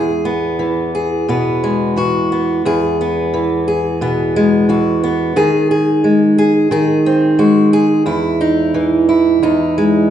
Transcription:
steel-string acoustic guitar
Already playing: E2 B3 G#4
0.25 B3
0.59 E3
0.95 G#4
1.28 B2 B3
1.64 G#3
1.96 E3 F#4
2.32 B3
2.65 E2 G#4
3.01 B3
3.34 E3
3.68 G#4
4.01 B2 B3
4.36 G#3
4.69 E3 F#4
5.04 B3
5.36 D#3 G#4
5.71 G#4
6.04 G#3
6.38 G#4
6.71 D#3 G#4
7.06 C4
7.39 G#3 F#4
7.73 G#4
8.06 E2 E4
8.41 D#4
8.74 E3
9.09 E4
9.43 E2 D#4
9.78 G#3

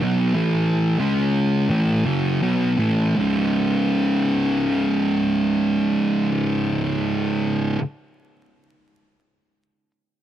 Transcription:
distorted electric guitar
0.02 B2 F#3 B3
0.34 A2 E3 A3
1.00 C#3 G#3 C#4
1.69 A2 E3 A3
2.04 F#2 C#3 F#3
2.41 B2 F#3 B3
2.78 A2 E3 A3
3.16 C#2 G#2
3.20 C#3

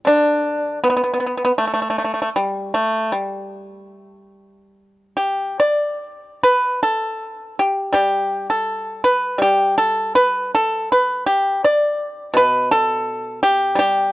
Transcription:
pipa
0.05 D3 D4
0.84 B3
0.90 B3
0.97 B3
1.04 B3
1.14 B3
1.20 B3
1.26 B3
1.37 B3
1.45 B3
1.58 A3
1.67 A3
1.74 A3
1.82 A3
1.90 A3
1.98 A3
2.04 A3
2.14 A3
2.22 A3
2.36 G3
2.74 A3
3.12 G3
5.17 G4
5.60 D5
6.43 B4
6.83 A4
7.59 G4
7.93 G3 G4
8.50 A4
9.04 B4
9.38 G3 G4
9.78 A4
10.15 B4
10.55 A4
10.92 B4
11.26 G4
11.64 D5
12.34 B2 B4
12.71 A4
13.43 G4
13.75 G3 G4

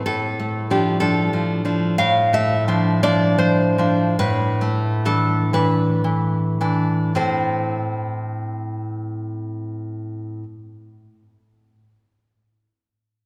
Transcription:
nylon-string guitar
0.06 A2 A4
0.40 A3
0.70 F3 D4 G4
1.00 F3 D4 A4
1.33 F3
1.65 F3 D4
1.98 A2 F5
2.33 A3 E5
2.68 F3 D4
3.03 F3 D4 D5
3.38 F3 C5
3.78 F3 D4
4.19 A2 B4
4.61 A3
5.05 E3 D4 A4
5.53 E3 D4 B4
6.04 E3
6.61 E3 D4
7.15 A2 C4 E4 A4 C5

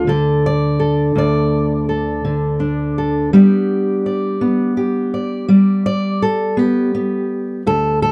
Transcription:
steel-string acoustic guitar
Already playing: D2 D5
0.07 D3 A4
0.46 D5
0.80 A4
1.15 D2 D5
1.89 A4
2.25 D3
2.60 D4
2.98 A4
3.33 G3 B3 G4 D5
4.06 D5
4.41 B3
4.77 G4
5.14 D5
5.48 G3 D5
5.86 D5
6.22 A4
6.57 B3 G4
6.95 B3
7.67 D2 A4
8.02 A4

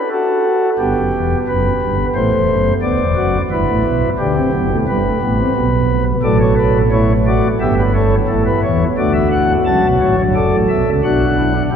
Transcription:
pipe organ
0.11 F#4 A4
0.78 G1 G2 B3 G4
0.96 F#1 F#2
1.13 E1 E2
1.47 F#1 F#2 B4
1.82 G1 G2
2.15 A1 A2 A3 C5
2.32 E1 E2
2.48 F#1 F#2
2.82 D1 D2 B3 D5
2.99 E1 E2
3.15 F#1 F#2 F#4
3.50 G1 G2 E4 B4
3.68 A1 A2
3.84 B1 B2
4.18 D2 D3 D4 G4
4.36 C4
4.53 F#1 F#2 B3
4.70 A3
4.87 G1 G2 G3 B4
5.05 A3
5.21 A1 A2 B3
5.39 C4
5.55 B1 B2 B3
6.22 A1 A2 F#3 A4 D5
6.40 C#5
6.57 B4
6.91 A3 E4 C#5
7.27 F#4 D5
7.60 G1 G2 B3 G4 E5
7.78 B4
7.94 A4 C#5
8.27 A1 A2 E4 A4
8.46 B4
8.63 E2 E3 C#5
8.98 D2 D3 A3 F#4 D5
9.14 E5
9.31 F#5
9.65 C#2 C#3 F#3 A5
9.83 B1 B2
10.01 A1 A2 C#5
10.18 G1 G2
10.34 F#1 F#2 A4 D5
10.52 A1 A2
10.69 B1 B2 E5
10.87 C#2 C#3
11.03 B1 B2 D4 F#4 F#5
11.38 E4
11.55 D4
11.71 C#2 C#3 E4 G4

